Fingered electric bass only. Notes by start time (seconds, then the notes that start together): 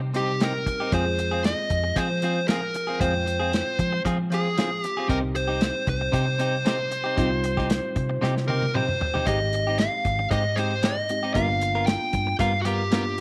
Already playing: C3
0.92 F2
1.71 F2
1.96 F3
3.00 F2
3.79 F3
4.05 F3
5.10 C2
5.87 C2
6.14 C3
7.18 C2
7.96 C3
8.23 C3
9.26 G#1
10.05 G#1
10.31 G#2
11.35 G1
12.13 G2
12.40 G2